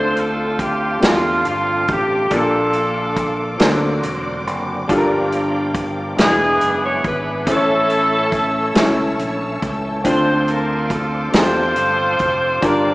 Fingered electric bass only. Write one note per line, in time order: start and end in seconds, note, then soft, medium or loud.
0.00 0.98 D2 medium
1.02 1.42 E2 medium
1.45 1.85 G1 medium
1.89 2.28 A1 medium
2.31 3.56 A#1 loud
3.61 4.00 D2 medium
4.03 4.47 E1 medium
4.47 4.86 F#1 medium
4.89 6.14 G1 medium
6.19 6.58 E1 medium
6.62 7.01 F#1 medium
7.04 7.44 G#1 medium
7.46 8.71 A1 medium
8.76 9.19 C#2 medium
9.19 9.58 A#1 medium
9.62 10.02 C#2 medium
10.04 11.29 D2 loud
11.33 11.73 E2 medium
11.77 12.16 G1 medium
12.20 12.59 F1 medium
12.62 12.94 G1 medium